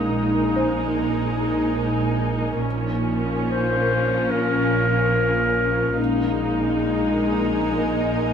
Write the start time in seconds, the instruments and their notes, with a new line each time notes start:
Already playing: double bass section A#1, cello section A#2, viola section G#3 D#4, clarinet D#4, ambient pad D#4 A#4 G#5, violin section A#5 D#6
0.56 grand piano C5
2.65 double bass section A#1, cello section A#2, viola section F3 C#4, ambient pad C#4 A#4 F5
3.48 clarinet C5
4.30 clarinet A#4
5.97 double bass section A#1, cello section A#2, viola section G#3 D#4, clarinet D#4, ambient pad A#4 D#5 G#5